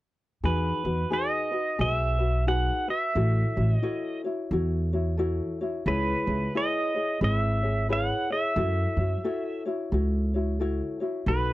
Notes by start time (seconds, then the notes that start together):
0.43 E2 D#4 F#4 G#4 B4
0.84 E2 D#4 F#4 B4
1.10 D#4 F#4 G#4 B4 D#5
1.51 D#4 F#4 B4
1.78 B1 F#4 G#4 B4 E5
2.18 F#4 B4
2.47 D#4 F#4 G#4 B4 F#5
2.88 F#4 B4 E5
3.15 A1 E4 F#4 A4 C#5
3.56 A1 E4 F#4 C#5
3.75 D#5
3.82 E4 F#4 A4 C#5
4.24 E4 F#4 C#5
4.51 E2 E4 F#4 A4 C#5
4.93 E4 F#4 C#5
5.17 E4 F#4 A4 C#5
5.61 E4 F#4 C#5
5.86 C#2 E4 G#4 B4 C#5
6.27 C#2 E4 G#4 C#5
6.55 E4 G#4 B4 C#5 D#5
6.95 E4 G#4 C#5
7.21 G#1 E4 G#4 B4 C#5 E5
7.63 E4 G#4 C#5
7.89 E4 G#4 B4 C#5 F#5
8.30 E4 G#4 C#5 E5
8.56 F#2 E4 F#4 A4 C#5
8.97 F#2 E4 F#4 C#5
9.24 E4 F#4 A4 C#5
9.65 E4 F#4 C#5
9.92 C#2 E4 F#4 A4 C#5
10.34 E4 F#4 C#5
10.60 E4 F#4 A4 C#5
11.00 E4 F#4 C#5
11.26 B1 D#4 F#4 A4 B4